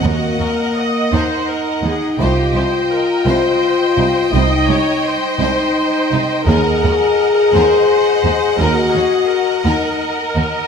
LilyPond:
<<
  \new Staff \with { instrumentName = "Violin section" } { \time 6/8 \key ees \dorian \tempo 4. = 56 ges''2. | g''2.~ | g''2. | ges''2.~ |
ges''2. | }
  \new Staff \with { instrumentName = "Viola section" } { \time 6/8 \key ees \dorian ges'8 bes'8 ees''8 c''8 bes'8 aes'8 | g'8 c''8 bes'8 c''4. | ees''8 des''8 c''2 | bes'4. c''4. |
bes'8 aes'8 bes'2 | }
  \new Staff \with { instrumentName = "Violin section" } { \time 6/8 \key ees \dorian << { ees''2. | ees''2.~ | ees''2. | ees''2.~ |
ees''2. | } \\ { bes'8 ges'8 r8 bes'8 r8 ees'8 | c''8 g'8 r8 c''8 r8 ees'8 | c''8 g'8 r8 c''8 r8 ees'8 | bes'8 ges'8 r8 bes'8 r8 ees'8 |
bes'8 ges'8 r8 bes'8 r8 ees'8 | } >> }
  \new Staff \with { instrumentName = "French horn section" } { \time 6/8 \key ees \dorian bes4. ees'4. | f'2. | ees'4. ees'4. | aes'2. |
ges'4. ees'8 r4 | }
  \new Staff \with { instrumentName = "Cello section" } { \clef bass \time 6/8 \key ees \dorian ees,8 ees,8 r8 ees,8 r8 ees,8 | c,8 c,8 r8 c,8 r8 c,8 | c,8 c,8 r8 c,8 r8 c,8 | ees,8 ees,8 r8 ees,8 r8 ees,8 |
ees,8 ees,8 r8 ees,8 r8 ees,8 | }
  \new Staff \with { instrumentName = "Double bass section" } { \clef bass \time 6/8 \key ees \dorian ees,8 r2 r8 | c,8 r2 r8 | c,8 r2 r8 | ees,8 r2 r8 |
ees,8 r2 r8 | }
>>